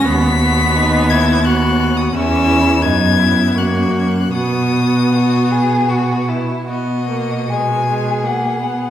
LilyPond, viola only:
\new Staff \with { instrumentName = "Viola" } { \time 3/4 \key b \major \tempo 4 = 83 b8 b4. b4 | cis'4 b4 ais4 | b2~ b8 r8 | b8 ais8 gis8 gis8 ais8 b8 | }